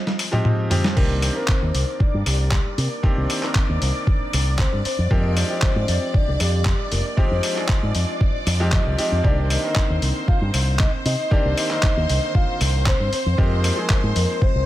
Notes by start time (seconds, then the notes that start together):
Already playing: F3 G#3 C4 D#4 G#4
0.07 snare
0.19 open hi-hat
0.32 F3 G#3 C4 D#4 G4, mid tom
0.45 mid tom
0.70 F3 G#3 C4 D#4 G4, mid tom, open hi-hat
0.84 snare
0.96 C2 D#3 A#3 C4 D4 G4 A#4 D5, kick, crash
1.22 C5, open hi-hat
1.35 D#3 A#3 C4 D4 A#4
1.48 kick, clap
1.62 D#2
1.74 C2, open hi-hat
2.00 D5, muted fingered electric bass stroke, kick
2.14 G2
2.26 C2 G4, open hi-hat
2.51 kick, clap
2.78 C3 A#4, open hi-hat
3.03 D#3 A#3 C4 D4 G4 C5, muted fingered electric bass stroke, kick
3.18 C2
3.30 open hi-hat
3.42 D#3 A#3 C4 D4 A#4, clap
3.55 kick, clap
3.69 D#2
3.82 C2, open hi-hat
4.07 kick
4.33 C2, open hi-hat
4.59 C5, kick, clap
4.73 G2
4.85 C5, muted fingered electric bass stroke, open hi-hat
4.98 F2
5.11 F2 F3 G#3 C4 D#4 G4 A#4, kick
5.37 C5, open hi-hat
5.49 F3 G#3 C4 D#4 G4
5.62 kick, clap
5.76 G#2
5.88 F2, open hi-hat
6.14 D5, muted fingered electric bass stroke, kick
6.28 C2
6.40 F2 G4, open hi-hat
6.65 kick, clap
6.91 F1 A#4, open hi-hat
7.17 F3 G#3 C4 D#4 G4 C5, muted fingered electric bass stroke, kick
7.31 F2
7.43 open hi-hat
7.56 F3 G#3 C4 D#4 G#4, clap
7.69 kick, clap
7.83 G#2
7.95 F2, open hi-hat
8.21 kick
8.46 F2, open hi-hat
8.60 F3 G#3 C4 D#4 G4
8.72 D#5, kick, clap
8.86 C2
8.98 F3 G#3 C4 D#4 G4 D#5, muted fingered electric bass stroke, open hi-hat
9.12 F2
9.23 C2 D#3 A#3 C4 D4 G4 C5 D5, kick
9.50 D#5, open hi-hat
9.63 D3 D#3 A#3 C4 A#4
9.76 kick, clap
9.90 D#2
10.02 C2, open hi-hat
10.28 F5, muted fingered electric bass stroke, kick
10.42 G2
10.54 C2, open hi-hat
10.79 D#5, kick, clap
11.05 C3 D#5, open hi-hat
11.31 D#3 A#3 C4 D4 G4 D5, muted fingered electric bass stroke, kick
11.45 C2
11.57 D#5, open hi-hat
11.70 D3 D#3 A#3 C4 A#4, clap
11.83 kick, clap
11.97 D#2
12.09 C2, open hi-hat
12.35 F5, kick
12.61 C2, open hi-hat
12.86 C5, kick, clap
13.00 G2
13.12 C5, muted fingered electric bass stroke, open hi-hat
13.26 F2
13.33 C5
13.38 F2 F3 G#3 C4 D#4 G4 A#4, kick
13.64 open hi-hat
13.76 F3 G#3 C4 D#4 G#4
13.90 kick, clap
14.03 G#2
14.16 F2 A#4, open hi-hat
14.42 C5, muted fingered electric bass stroke, kick
14.55 C2